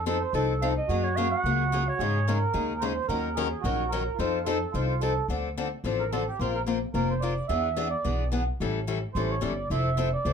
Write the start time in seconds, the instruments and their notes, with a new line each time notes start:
Already playing: upright bass F2
0.06 steel-string acoustic guitar F3 C4 D#4 A4, accordion A4
0.20 accordion C5
0.33 upright bass C2, steel-string acoustic guitar F3 C4 D#4 A4, accordion A4
0.62 steel-string acoustic guitar F3 C4 D#4 A4, clarinet F5
0.77 clarinet D#5
0.88 upright bass F#2, steel-string acoustic guitar F#3 A#3 C#4 G#4, accordion F#4
1.04 clarinet C#5
1.16 steel-string acoustic guitar F#3 A#3 C#4 G#4, clarinet F5
1.31 clarinet F#5
1.44 upright bass C#2, steel-string acoustic guitar F#3 A#3 C#4 G#4
1.72 steel-string acoustic guitar F#3 A#3 C#4 G#4
1.89 clarinet C#5
1.98 upright bass G#2, steel-string acoustic guitar C#3 G#3 C#4 D#4 G#4, accordion G#4
2.28 steel-string acoustic guitar C#3 G#3 C#4 D#4 G#4, accordion A#4
2.54 upright bass D#2, steel-string acoustic guitar C#3 G#3 C#4 D#4 G#4
2.80 steel-string acoustic guitar C#3 G#3 C#4 D#4 G#4, accordion C5
3.08 upright bass D#2, steel-string acoustic guitar D#3 F#3 C#4 D#4 A#4, accordion A#4
3.35 steel-string acoustic guitar D#3 F#3 C#4 D#4 A#4, accordion G#4
3.61 upright bass A#1, steel-string acoustic guitar D#3, accordion F#4
3.65 steel-string acoustic guitar F#3 C#4 D#4 A#4
3.89 steel-string acoustic guitar D#3 C#4, accordion A#4
3.93 steel-string acoustic guitar F#3 D#4 A#4
4.15 upright bass F2, accordion F4
4.19 steel-string acoustic guitar F3 C4 D#4 A4
4.45 steel-string acoustic guitar F3 C4 D#4 A4, accordion A4
4.72 upright bass C2, steel-string acoustic guitar F3 C4 D#4 A4, accordion F4
5.00 steel-string acoustic guitar F3 C4 D#4 A4, accordion A4
5.28 upright bass D2, steel-string acoustic guitar D3 F3 C4 D4 A4
5.57 steel-string acoustic guitar D3 F3 C4 D4 A4
5.84 upright bass A1, steel-string acoustic guitar D3 F3 C4 D4 A4
5.99 accordion A#4
6.12 steel-string acoustic guitar D3 F3 C4 D4 A4, accordion A4
6.28 accordion G4
6.39 upright bass A#1, steel-string acoustic guitar A#3 C4 F4 A#4, accordion F4
6.55 accordion A#4
6.67 steel-string acoustic guitar A#3 C4 F4 A#4
6.94 upright bass F1, steel-string acoustic guitar A#3 C4 F4 A#4, accordion A#4
7.10 accordion C5
7.20 steel-string acoustic guitar A#3 C4 F4 A#4, accordion D5
7.48 upright bass E2, steel-string acoustic guitar E3 B3 D4 G#4, accordion E5
7.76 steel-string acoustic guitar E3 B3 D4 G#4
7.90 accordion D5
8.04 upright bass B1, steel-string acoustic guitar E3 B3 D4 G#4
8.32 steel-string acoustic guitar E3 B3 D4 G#4
8.60 upright bass A1, steel-string acoustic guitar E3 G3 C#4 E4 A4
8.87 steel-string acoustic guitar E3 G3 C#4 E4 A4
9.14 upright bass A1, steel-string acoustic guitar E3 G3 C#4 E4 A4, accordion C5
9.30 accordion C#5
9.41 upright bass G1, steel-string acoustic guitar E3 G3 C#4 E4 A4, accordion D5
9.70 upright bass F1, steel-string acoustic guitar F3 C4 E4 A4, accordion E5
9.97 steel-string acoustic guitar F3 C4 E4 A4
10.13 accordion D5
10.25 upright bass C2, steel-string acoustic guitar F3 C4 E4 A4